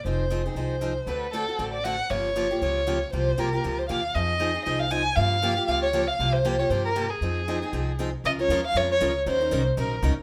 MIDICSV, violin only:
0, 0, Header, 1, 2, 480
1, 0, Start_track
1, 0, Key_signature, -4, "minor"
1, 0, Tempo, 255537
1, 98, Time_signature, 4, 2, 24, 8
1, 19208, End_track
2, 0, Start_track
2, 0, Title_t, "Violin"
2, 0, Program_c, 0, 40
2, 127, Note_on_c, 0, 72, 77
2, 1011, Note_off_c, 0, 72, 0
2, 1079, Note_on_c, 0, 72, 70
2, 2032, Note_on_c, 0, 71, 78
2, 2060, Note_off_c, 0, 72, 0
2, 2496, Note_off_c, 0, 71, 0
2, 2507, Note_on_c, 0, 69, 75
2, 3208, Note_off_c, 0, 69, 0
2, 3261, Note_on_c, 0, 74, 76
2, 3462, Note_on_c, 0, 78, 87
2, 3490, Note_off_c, 0, 74, 0
2, 3953, Note_on_c, 0, 73, 85
2, 3981, Note_off_c, 0, 78, 0
2, 4901, Note_off_c, 0, 73, 0
2, 4913, Note_on_c, 0, 73, 75
2, 5807, Note_off_c, 0, 73, 0
2, 5885, Note_on_c, 0, 72, 86
2, 6378, Note_on_c, 0, 70, 77
2, 6406, Note_off_c, 0, 72, 0
2, 7117, Note_on_c, 0, 72, 72
2, 7145, Note_off_c, 0, 70, 0
2, 7306, Note_off_c, 0, 72, 0
2, 7317, Note_on_c, 0, 77, 79
2, 7801, Note_on_c, 0, 75, 91
2, 7829, Note_off_c, 0, 77, 0
2, 8730, Note_off_c, 0, 75, 0
2, 8741, Note_on_c, 0, 75, 78
2, 9012, Note_on_c, 0, 77, 83
2, 9040, Note_off_c, 0, 75, 0
2, 9220, Note_on_c, 0, 80, 94
2, 9248, Note_off_c, 0, 77, 0
2, 9688, Note_on_c, 0, 77, 93
2, 9716, Note_off_c, 0, 80, 0
2, 10649, Note_off_c, 0, 77, 0
2, 10660, Note_on_c, 0, 77, 86
2, 10918, Note_off_c, 0, 77, 0
2, 10944, Note_on_c, 0, 73, 85
2, 11414, Note_on_c, 0, 77, 90
2, 11442, Note_off_c, 0, 73, 0
2, 11890, Note_on_c, 0, 72, 87
2, 11918, Note_off_c, 0, 77, 0
2, 12376, Note_on_c, 0, 73, 81
2, 12404, Note_off_c, 0, 72, 0
2, 12585, Note_on_c, 0, 72, 77
2, 12613, Note_off_c, 0, 73, 0
2, 12859, Note_off_c, 0, 72, 0
2, 12876, Note_on_c, 0, 70, 84
2, 13340, Note_on_c, 0, 68, 71
2, 13368, Note_off_c, 0, 70, 0
2, 14988, Note_off_c, 0, 68, 0
2, 15511, Note_on_c, 0, 75, 97
2, 15623, Note_off_c, 0, 75, 0
2, 15807, Note_on_c, 0, 73, 94
2, 16221, Note_off_c, 0, 73, 0
2, 16278, Note_on_c, 0, 77, 98
2, 16480, Note_on_c, 0, 73, 91
2, 16508, Note_off_c, 0, 77, 0
2, 16724, Note_off_c, 0, 73, 0
2, 16745, Note_on_c, 0, 73, 92
2, 17168, Note_off_c, 0, 73, 0
2, 17432, Note_on_c, 0, 72, 98
2, 18106, Note_off_c, 0, 72, 0
2, 18412, Note_on_c, 0, 70, 70
2, 18823, Note_off_c, 0, 70, 0
2, 19208, End_track
0, 0, End_of_file